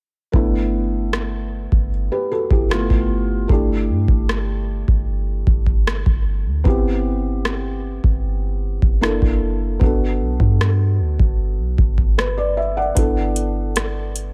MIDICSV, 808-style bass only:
0, 0, Header, 1, 2, 480
1, 0, Start_track
1, 0, Key_signature, 1, "major"
1, 0, Tempo, 789474
1, 204, Time_signature, 4, 2, 24, 8
1, 8715, End_track
2, 0, Start_track
2, 0, Title_t, "808-style bass"
2, 0, Program_c, 0, 38
2, 204, Note_on_c, 0, 31, 105
2, 1020, Note_off_c, 0, 31, 0
2, 1047, Note_on_c, 0, 31, 100
2, 1276, Note_off_c, 0, 31, 0
2, 1523, Note_on_c, 0, 31, 90
2, 1754, Note_off_c, 0, 31, 0
2, 1764, Note_on_c, 0, 31, 99
2, 2110, Note_off_c, 0, 31, 0
2, 2124, Note_on_c, 0, 31, 94
2, 2366, Note_on_c, 0, 43, 86
2, 2375, Note_off_c, 0, 31, 0
2, 2479, Note_off_c, 0, 43, 0
2, 2483, Note_on_c, 0, 31, 95
2, 2944, Note_off_c, 0, 31, 0
2, 2968, Note_on_c, 0, 31, 98
2, 3312, Note_off_c, 0, 31, 0
2, 3325, Note_on_c, 0, 31, 93
2, 3671, Note_off_c, 0, 31, 0
2, 3686, Note_on_c, 0, 31, 105
2, 3926, Note_on_c, 0, 38, 91
2, 3935, Note_off_c, 0, 31, 0
2, 4039, Note_off_c, 0, 38, 0
2, 4046, Note_on_c, 0, 31, 97
2, 4861, Note_off_c, 0, 31, 0
2, 4888, Note_on_c, 0, 31, 99
2, 5347, Note_off_c, 0, 31, 0
2, 5364, Note_on_c, 0, 30, 89
2, 5595, Note_off_c, 0, 30, 0
2, 5606, Note_on_c, 0, 30, 102
2, 5951, Note_off_c, 0, 30, 0
2, 5965, Note_on_c, 0, 31, 96
2, 6205, Note_on_c, 0, 35, 87
2, 6214, Note_off_c, 0, 31, 0
2, 6319, Note_off_c, 0, 35, 0
2, 6323, Note_on_c, 0, 43, 101
2, 6686, Note_on_c, 0, 38, 94
2, 6695, Note_off_c, 0, 43, 0
2, 6799, Note_off_c, 0, 38, 0
2, 6807, Note_on_c, 0, 31, 103
2, 7044, Note_on_c, 0, 35, 91
2, 7053, Note_off_c, 0, 31, 0
2, 7158, Note_off_c, 0, 35, 0
2, 7165, Note_on_c, 0, 31, 100
2, 7860, Note_off_c, 0, 31, 0
2, 7883, Note_on_c, 0, 31, 102
2, 8699, Note_off_c, 0, 31, 0
2, 8715, End_track
0, 0, End_of_file